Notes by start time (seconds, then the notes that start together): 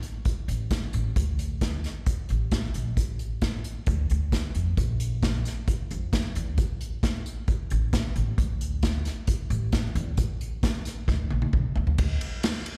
0.03 closed hi-hat
0.25 kick, closed hi-hat
0.48 A1, closed hi-hat
0.71 kick, snare, closed hi-hat
0.93 A1, closed hi-hat
1.16 D2, kick, closed hi-hat
1.39 closed hi-hat
1.61 kick, snare, closed hi-hat
1.84 snare, closed hi-hat
2.06 kick, closed hi-hat
2.29 A1, closed hi-hat
2.51 kick, snare, closed hi-hat
2.74 A#1, closed hi-hat
2.97 A1, kick, closed hi-hat
3.19 closed hi-hat
3.42 kick, snare, closed hi-hat
3.64 closed hi-hat
3.86 D2, kick, closed hi-hat
4.10 D2, closed hi-hat
4.32 kick, snare, closed hi-hat
4.55 F2, closed hi-hat
4.77 A#1, kick, closed hi-hat
5.00 closed hi-hat
5.23 kick, snare, closed hi-hat
5.45 snare, closed hi-hat
5.68 kick, closed hi-hat
5.91 F2, closed hi-hat
6.13 kick, snare, closed hi-hat
6.35 E2, closed hi-hat
6.58 A1, kick, closed hi-hat
6.81 closed hi-hat
7.03 kick, snare, closed hi-hat
7.26 closed hi-hat
7.48 kick, closed hi-hat
7.70 A1, closed hi-hat
7.93 kick, snare, closed hi-hat
8.16 A1, closed hi-hat
8.38 D2, kick, closed hi-hat
8.61 closed hi-hat
8.83 kick, snare, closed hi-hat
9.05 snare, closed hi-hat
9.27 kick, closed hi-hat
9.50 A1, closed hi-hat
9.72 kick, snare, closed hi-hat
9.95 E2, closed hi-hat
10.17 A1, kick, closed hi-hat
10.41 closed hi-hat
10.63 kick, snare, closed hi-hat
10.85 snare, closed hi-hat
11.08 D2, kick, snare
11.31 A#1, high tom
11.42 high tom
11.53 C2, kick, mid tom
11.76 D2, floor tom
11.87 floor tom
11.98 D2, kick, ride
12.21 ride
12.43 snare, ride
12.66 ride